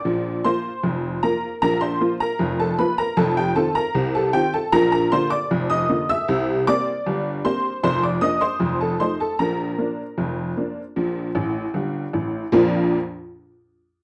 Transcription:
X:1
M:2/4
L:1/16
Q:1/4=77
K:Bb
V:1 name="Honky-tonk piano"
[dd']2 [cc']4 [Bb]2 | [Bb] [cc']2 [Bb]2 [Aa] [_c_c'] [Bb] | [Aa] [Gg] [Aa] [Bb]2 [Aa] [Gg] [Aa] | [Bb] [Bb] [cc'] [dd']2 [ee']2 [=e=e']- |
[=e=e']2 [dd']4 [cc']2 | [cc'] [dd'] [ee'] [cc']2 [Aa] [cc'] [Aa] | [Bb]8- | [Bb]4 z4 |
[B,,,F,,F,B,DF]2 z6 |]
V:2 name="Honky-tonk piano" clef=bass
[B,,,B,,]2 [F,B,F]2 [F,,,F,,]2 [F,B,F]2 | [B,,,B,,]2 [F,B,F]2 [F,,,F,,]2 [F,B,F]2 | [F,,,F,,]2 [E,CF]2 [C,,C,]2 [E,CF]2 | [B,,,B,,]2 [D,B,F]2 [F,,,F,,]2 [D,B,F]2 |
[C,,C,]2 [G,B,C]2 [G,,,G,,]2 [G,B,C]2 | [F,,,F,,]2 [F,B,D]2 [F,,,F,,]2 [F,A,E]2 | [B,,,B,,]2 [F,B,D]2 [F,,,F,,]2 [F,B,D]2 | [B,,,B,,]2 [A,,,A,,]2 [G,,,G,,]2 [A,,,A,,]2 |
z8 |]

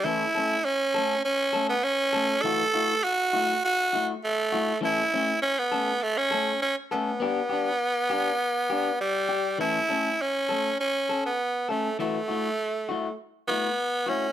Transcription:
X:1
M:4/4
L:1/16
Q:"Swing 16ths" 1/4=100
K:Amix
V:1 name="Clean electric guitar"
[E,A,CA]2 [A,CA]2 z2 [A,CA]2 z2 [A,CA]2 z2 [A,CA]2 | [E,A,EF]2 [A,EF]2 z2 [A,EF]2 z2 [A,EF]2 z2 [A,EF]2 | [E,A,CA]2 [A,C]2 z2 [A,CA]2 z2 [A,CA]2 z2 [A,CA]2 | [B,DG]2 [DG]2 z2 [DG]2 z2 [DG]2 z2 G2 |
[E,A,CA]2 [A,CA]2 z2 [A,CA]2 z2 [CA]2 z2 [A,CA]2 | [E,A,EF]2 [A,EF]2 z2 [A,EF]2 z2 [A,EF]2 z2 [A,EF]2 |]
V:2 name="Tenor saxophone"
E4 C4 C3 B, C4 | A4 F4 F3 z A,4 | E4 C B,3 A, C3 C2 B,2- | B,12 G,4 |
E4 C4 C3 B,3 A,2 | A,8 z2 B,4 C2 |]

